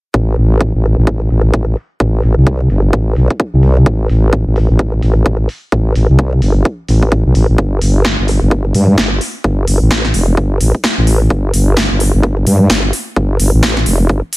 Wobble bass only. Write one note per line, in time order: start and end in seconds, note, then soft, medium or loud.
0.14 0.36 A1 medium
0.37 0.72 A1 loud
0.75 0.96 A1 medium
0.98 1.29 A1 loud
1.30 1.52 A1 loud
1.54 1.75 A1 loud
2.00 2.22 A1 medium
2.23 2.35 A1 loud
2.37 2.68 C2 medium
2.70 2.92 G1 loud
2.93 3.15 A1 medium
3.16 3.28 B1 medium
3.54 3.85 C2 loud
3.86 4.08 A1 medium
4.09 4.44 A1 loud
4.47 4.68 A1 medium
4.70 5.01 A1 loud
5.02 5.24 A1 loud
5.26 5.48 A1 loud
5.72 5.94 A1 medium
5.95 6.07 A1 medium
6.09 6.41 C2 loud
6.42 6.64 G1 loud
6.89 7.24 A1 loud
7.26 7.34 B1 loud
7.35 7.47 A1 medium
7.49 7.57 A1 medium
7.58 7.80 G1 medium
7.82 8.17 G1 loud
8.19 8.40 G1 loud
8.42 8.73 G1 loud
8.75 8.96 G2 loud
8.98 9.20 G1 medium
9.44 9.66 G1 loud
9.68 9.79 G1 loud
9.82 10.13 A1 medium
10.14 10.36 F1 medium
10.37 10.59 G1 loud
10.61 10.72 A1 medium
10.98 11.29 A1 loud
11.30 11.52 G1 medium
11.54 11.89 G1 loud
11.91 12.12 G1 loud
12.14 12.45 G1 loud
12.47 12.68 G2 loud
12.70 12.92 G1 medium
13.16 13.38 G1 loud
13.40 13.51 G1 medium
13.54 13.85 A1 medium
13.86 14.08 F1 medium
14.09 14.21 G1 medium